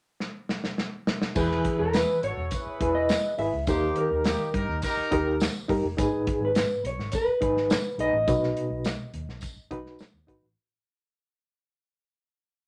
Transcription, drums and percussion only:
0.20 snare
0.49 snare
0.64 snare
0.78 snare
1.07 snare
1.22 snare
1.35 kick, crash, tambourine
1.51 snare
1.65 kick, closed hi-hat
1.93 snare, closed hi-hat, tambourine
2.23 closed hi-hat
2.51 kick, closed hi-hat, tambourine
2.81 kick, closed hi-hat
3.09 snare, closed hi-hat, tambourine
3.38 open hi-hat
3.67 kick, closed hi-hat, tambourine
3.96 closed hi-hat
4.24 snare, closed hi-hat, tambourine
4.54 kick, closed hi-hat
4.82 kick, closed hi-hat, tambourine
5.12 kick, closed hi-hat
5.40 snare, closed hi-hat, tambourine
5.69 kick, open hi-hat
5.98 kick, closed hi-hat, tambourine
6.27 kick, closed hi-hat
6.55 snare, closed hi-hat, tambourine
6.85 closed hi-hat
6.99 snare
7.12 kick, closed hi-hat, tambourine
7.42 kick, closed hi-hat
7.57 snare
7.70 snare, closed hi-hat, tambourine
7.99 closed hi-hat
8.28 kick, closed hi-hat, tambourine
8.43 snare
8.57 closed hi-hat
8.84 snare, closed hi-hat, tambourine
9.14 closed hi-hat
9.29 snare
9.41 kick, closed hi-hat, tambourine
9.71 kick, closed hi-hat
9.86 snare
9.99 snare, closed hi-hat, tambourine
10.28 kick, closed hi-hat

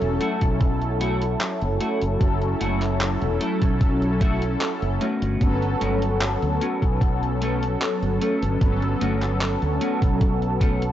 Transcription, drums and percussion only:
0.02 closed hi-hat
0.21 closed hi-hat
0.41 kick, closed hi-hat
0.61 kick, closed hi-hat
0.82 closed hi-hat
1.01 closed hi-hat
1.22 closed hi-hat
1.41 clap, closed hi-hat
1.62 closed hi-hat
1.80 closed hi-hat
2.02 closed hi-hat
2.21 kick, closed hi-hat
2.42 closed hi-hat
2.61 closed hi-hat
2.82 clap, closed hi-hat
3.01 clap, closed hi-hat
3.22 closed hi-hat
3.41 closed hi-hat
3.62 kick, closed hi-hat
3.81 kick, closed hi-hat
4.02 closed hi-hat
4.21 kick, closed hi-hat
4.42 closed hi-hat
4.61 clap, closed hi-hat
4.82 closed hi-hat
5.01 closed hi-hat
5.22 closed hi-hat
5.41 kick, closed hi-hat
5.62 closed hi-hat
5.81 closed hi-hat
6.02 closed hi-hat
6.21 clap, closed hi-hat
6.42 closed hi-hat
6.61 closed hi-hat
6.82 kick, closed hi-hat
7.01 kick, closed hi-hat
7.23 closed hi-hat
7.42 closed hi-hat
7.63 closed hi-hat
7.82 clap, closed hi-hat
8.03 closed hi-hat
8.21 closed hi-hat
8.42 closed hi-hat
8.61 kick, closed hi-hat
8.82 closed hi-hat
9.01 closed hi-hat
9.22 clap, closed hi-hat
9.41 clap, closed hi-hat
9.62 closed hi-hat
9.81 closed hi-hat
10.02 kick, closed hi-hat
10.21 kick, closed hi-hat
10.42 closed hi-hat
10.61 kick, closed hi-hat
10.82 closed hi-hat

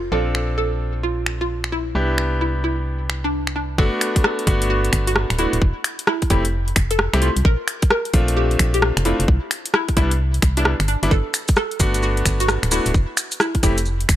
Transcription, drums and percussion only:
0.35 finger snap
1.26 finger snap
1.64 finger snap
2.18 finger snap
3.10 finger snap
3.47 finger snap
3.78 kick
4.01 finger snap, open hi-hat
4.16 kick, closed hi-hat
4.24 cross-stick
4.39 closed hi-hat
4.47 kick, open hi-hat
4.62 closed hi-hat
4.85 closed hi-hat
4.93 finger snap, kick, open hi-hat
5.07 closed hi-hat
5.16 cross-stick
5.30 finger snap, closed hi-hat
5.39 open hi-hat
5.53 closed hi-hat
5.62 kick
5.84 finger snap, open hi-hat
5.99 closed hi-hat
6.07 cross-stick
6.22 kick, closed hi-hat
6.30 kick, open hi-hat
6.45 closed hi-hat
6.68 closed hi-hat
6.76 finger snap, kick, open hi-hat
6.91 closed hi-hat
6.99 cross-stick
7.14 finger snap, closed hi-hat
7.22 open hi-hat
7.37 closed hi-hat
7.45 kick
7.68 finger snap, open hi-hat
7.82 kick, closed hi-hat
7.90 cross-stick
8.05 closed hi-hat
8.14 kick, open hi-hat
8.28 closed hi-hat
8.51 closed hi-hat
8.59 finger snap, kick, open hi-hat
8.74 closed hi-hat
8.82 cross-stick
8.97 finger snap, closed hi-hat
9.05 open hi-hat
9.20 closed hi-hat
9.28 kick
9.51 finger snap, open hi-hat
9.66 closed hi-hat
9.74 cross-stick
9.88 kick, closed hi-hat
9.97 kick, open hi-hat
10.11 closed hi-hat
10.34 closed hi-hat
10.42 finger snap, kick, open hi-hat
10.57 closed hi-hat
10.65 cross-stick
10.80 finger snap, closed hi-hat
10.88 open hi-hat
11.03 closed hi-hat
11.11 kick, maracas
11.34 finger snap, open hi-hat, maracas
11.48 kick, closed hi-hat, maracas
11.56 cross-stick, maracas
11.71 closed hi-hat
11.80 kick, open hi-hat, maracas
11.94 closed hi-hat, maracas
12.03 maracas
12.17 closed hi-hat
12.26 finger snap, kick, open hi-hat, maracas
12.40 closed hi-hat, maracas
12.48 cross-stick, maracas
12.63 finger snap, closed hi-hat
12.71 open hi-hat, maracas
12.86 closed hi-hat, maracas
12.94 kick, maracas
13.17 finger snap, open hi-hat, maracas
13.31 closed hi-hat, maracas
13.40 cross-stick, maracas
13.55 kick, closed hi-hat
13.63 kick, open hi-hat, maracas
13.78 closed hi-hat, maracas
13.86 maracas
14.01 closed hi-hat
14.09 finger snap, kick, open hi-hat, maracas

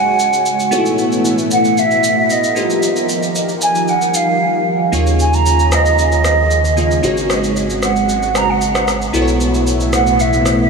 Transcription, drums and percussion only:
0.19 shaker
0.33 shaker
0.46 shaker
0.59 shaker
0.72 shaker
0.86 shaker
0.98 shaker
1.12 shaker
1.25 shaker
1.38 shaker
1.51 shaker
1.65 shaker
1.77 shaker
1.91 shaker
2.04 shaker
2.30 shaker
2.44 shaker
2.56 shaker
2.70 shaker
2.82 shaker
2.96 shaker
3.09 shaker
3.23 shaker
3.35 shaker
3.49 shaker
3.61 shaker
3.75 shaker
3.88 shaker
4.01 shaker
4.14 shaker
4.93 shaker
5.07 shaker
5.19 shaker
5.33 shaker
5.46 shaker
5.59 shaker
5.72 cross-stick, shaker
5.86 shaker
5.98 shaker
6.12 shaker
6.24 cross-stick, shaker
6.51 shaker
6.65 shaker
6.77 shaker
6.91 shaker
7.04 shaker
7.17 shaker
7.30 cross-stick, shaker
7.44 shaker
7.56 shaker
7.70 shaker
7.82 cross-stick, shaker
7.96 shaker
8.09 shaker
8.23 shaker
8.35 cross-stick, shaker
8.61 shaker
8.75 cross-stick, shaker
8.88 cross-stick, shaker
9.02 shaker
9.14 shaker
9.28 shaker
9.40 shaker
9.54 shaker
9.67 shaker
9.80 shaker
9.93 cross-stick, shaker
10.07 shaker
10.20 shaker
10.33 shaker
10.46 cross-stick, shaker

